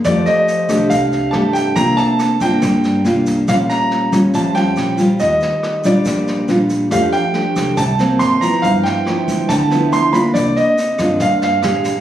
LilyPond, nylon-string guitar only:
\new Staff \with { instrumentName = "Nylon-string guitar" } { \time 4/4 \key f \mixolydian \tempo 4 = 140 << { <a g'>4. <a d' g'>4. <a d' g'>4 | <bes d' f'>4. <bes d' f'>4. <bes d' f'>4 | <g des' f'>4. <g des' f'>4 <g des' f'>4 <g f'>8~ | <g f'>4. <g d' f'>4. <g d' f'>4 |
<a d' g'>8 r8 <a d' g'>4 r8 <ges bes c'>4 <f b e'>8~ | <f b e'>4 <f b e'>4 r8 <f b e'>4 <bes d' f'>8~ | <bes d' f'>4 r8 <bes d' f'>4. <aes d' g'>8 r8 | } \\ { f2 c2 | c2 g2 | bes,2 f2 | ees2 bes,2 |
f2 c4 r4 | g,2 d2 | c2 g,4 r4 | } >> }